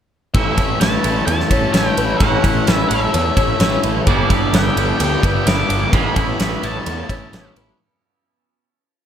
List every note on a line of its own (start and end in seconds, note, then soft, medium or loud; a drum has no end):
0.34 0.50 A1 medium
0.34 2.21 A2 medium
0.34 0.81 E3 medium
0.34 0.60 A3 medium
0.34 0.59 C#4 medium
0.34 5.90 E4 medium
0.34 0.58 E4 loud
0.34 0.80 A4 medium
0.34 4.03 C#5 medium
0.34 0.82 E5 loud
0.34 4.03 A5 medium
0.34 kick loud
0.34 ride loud
0.58 0.73 A1 medium
0.58 0.82 A3 medium
0.58 0.82 C#4 medium
0.58 0.83 E4 medium
0.58 kick medium
0.58 ride medium
0.80 0.96 A1 medium
0.80 1.75 E3 medium
0.80 1.07 A3 medium
0.80 1.05 C#4 medium
0.80 1.05 E4 medium
0.80 1.27 B4 medium
0.80 1.26 A5 loud
0.80 snare loud
0.80 ride loud
1.04 1.20 A1 loud
1.04 1.52 A3 medium
1.04 1.52 C#4 medium
1.04 1.51 E4 medium
1.04 ride medium
1.27 1.42 E2 loud
1.27 1.50 A4 medium
1.27 1.73 A5 medium
1.27 ride loud
1.40 snare soft
1.50 1.66 A1 medium
1.50 1.75 A3 medium
1.50 1.75 C#4 medium
1.50 1.76 E4 medium
1.50 1.97 C#5 medium
1.50 kick medium
1.50 ride medium
1.73 1.89 A1 medium
1.73 2.22 E3 medium
1.73 2.21 A3 medium
1.73 2.22 C#4 medium
1.73 2.23 E4 medium
1.73 2.18 G5 medium
1.73 snare loud
1.73 ride loud
1.97 2.13 A1 medium
1.97 2.20 A3 medium
1.97 2.21 C#4 medium
1.97 2.22 E4 medium
1.97 2.20 B4 medium
1.97 ride medium
2.18 2.36 A1 loud
2.18 2.67 A2 medium
2.18 2.67 E3 medium
2.18 2.67 A4 medium
2.18 2.73 F#5 loud
2.18 kick loud
2.18 ride loud
2.23 2.45 A3 medium
2.23 2.44 C#4 loud
2.23 2.44 E4 loud
2.44 2.59 A1 medium
2.44 2.67 A3 medium
2.44 2.67 C#4 medium
2.44 2.69 E4 medium
2.44 kick medium
2.44 ride medium
2.67 2.83 A1 medium
2.67 3.60 E3 medium
2.67 2.92 A3 medium
2.67 2.91 C#4 medium
2.67 2.90 E4 medium
2.67 3.14 B4 medium
2.67 snare loud
2.67 ride loud
2.73 2.89 E5 loud
2.89 3.06 A1 loud
2.89 3.37 C#4 medium
2.89 3.37 E4 medium
2.89 3.79 E5 medium
2.89 ride medium
2.93 3.38 A3 medium
3.14 3.29 E2 loud
3.14 3.37 A4 medium
3.14 ride medium
3.37 3.52 A1 medium
3.37 3.60 A3 medium
3.37 3.61 C#4 medium
3.37 3.62 E4 medium
3.37 3.84 C#5 medium
3.37 kick medium
3.37 ride medium
3.60 3.76 A1 loud
3.60 4.08 E3 medium
3.60 4.06 A3 medium
3.60 4.06 C#4 medium
3.60 4.09 E4 medium
3.60 snare loud
3.60 ride medium
3.83 3.99 A1 medium
3.83 4.06 A3 medium
3.83 4.06 C#4 medium
3.83 4.07 E4 medium
3.83 4.07 B4 medium
3.83 ride medium
4.07 4.22 G1 medium
4.07 4.54 G2 medium
4.07 4.54 D3 loud
4.07 4.32 E3 loud
4.07 4.30 G3 loud
4.07 4.31 B3 loud
4.07 4.29 D4 loud
4.07 4.29 E4 medium
4.07 4.54 G4 loud
4.07 7.76 B4 medium
4.07 4.55 D5 medium
4.07 5.92 G5 loud
4.07 kick loud
4.07 ride medium
4.30 4.45 G1 medium
4.30 4.54 E3 medium
4.30 4.54 G3 medium
4.30 4.55 B3 medium
4.30 4.76 D4 medium
4.30 4.56 E4 medium
4.30 kick medium
4.30 ride medium
4.53 4.68 G1 medium
4.53 4.79 E3 medium
4.53 4.78 G3 medium
4.53 4.78 B3 medium
4.53 4.78 E4 medium
4.53 5.00 A4 medium
4.53 5.00 G5 medium
4.53 snare loud
4.53 ride loud
4.76 4.92 G1 medium
4.76 5.26 E3 medium
4.76 5.24 G3 medium
4.76 5.25 B3 medium
4.76 5.21 D4 medium
4.76 5.24 E4 medium
4.76 ride medium
5.00 5.16 D2 medium
5.00 5.24 G4 medium
5.00 5.44 G5 medium
5.00 ride loud
5.22 5.39 G1 medium
5.22 5.46 E3 medium
5.22 5.47 G3 medium
5.22 5.48 B3 medium
5.22 5.47 D4 medium
5.22 5.48 E4 medium
5.22 5.70 B4 medium
5.22 kick medium
5.22 ride medium
5.46 5.62 G1 loud
5.46 5.92 D3 medium
5.46 5.93 E3 medium
5.46 5.93 G3 medium
5.46 5.94 B3 medium
5.46 5.68 D4 loud
5.46 5.94 E4 medium
5.46 5.94 D6 loud
5.46 snare loud
5.46 ride loud
5.69 5.85 G1 medium
5.69 5.93 G3 medium
5.69 5.94 B3 medium
5.69 5.92 D4 medium
5.69 5.92 A4 medium
5.69 ride medium
5.93 6.09 A1 medium
5.93 6.40 A2 medium
5.93 6.39 E3 medium
5.93 6.17 A3 medium
5.93 6.17 B3 medium
5.93 7.78 C#4 medium
5.93 6.17 C#4 medium
5.93 6.16 E4 medium
5.93 6.40 A4 medium
5.93 7.78 A5 medium
5.93 6.66 B5 loud
5.93 kick loud
5.93 ride loud
6.16 6.32 A1 medium
6.16 6.63 A3 medium
6.16 6.39 B3 medium
6.16 6.40 C#4 medium
6.16 6.40 E4 medium
6.16 kick medium
6.16 ride medium
6.40 6.56 A1 medium
6.40 6.87 E3 medium
6.40 6.64 B3 medium
6.40 6.63 C#4 medium
6.40 6.62 E4 medium
6.40 6.86 B4 medium
6.40 snare loud
6.40 ride loud
6.63 6.79 A1 medium
6.63 7.09 A3 medium
6.63 7.10 B3 medium
6.63 7.09 C#4 medium
6.63 7.08 E4 medium
6.63 7.53 A5 medium
6.63 ride medium
6.86 7.02 E2 medium
6.86 7.10 A4 medium
6.86 ride medium
7.09 7.25 A1 medium
7.09 7.32 A3 medium
7.09 7.33 B3 medium
7.09 7.33 C#4 medium
7.09 7.34 E4 medium
7.09 7.56 C#5 medium
7.09 kick medium
7.09 ride medium
7.33 7.48 A1 medium
7.33 7.78 E3 medium
7.33 7.56 A3 medium
7.33 7.79 B3 medium
7.33 7.79 C#4 medium
7.33 7.79 E4 medium
7.33 snare loud
7.33 ride medium
7.56 7.71 A1 medium
7.56 7.79 A3 medium
7.56 7.79 C#4 medium
7.56 7.78 E4 medium
7.56 7.80 B4 medium
7.56 ride medium